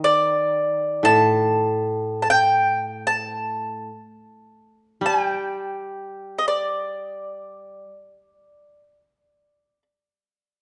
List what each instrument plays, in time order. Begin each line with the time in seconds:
Already playing: koto D#3
0.04 mandolin D5
1.03 koto A2, mandolin A5
2.22 mandolin A5
2.30 mandolin G5
3.07 mandolin A5
5.01 koto G3
5.06 mandolin G#5
5.24 mandolin G5
6.39 mandolin D#5
6.48 mandolin D5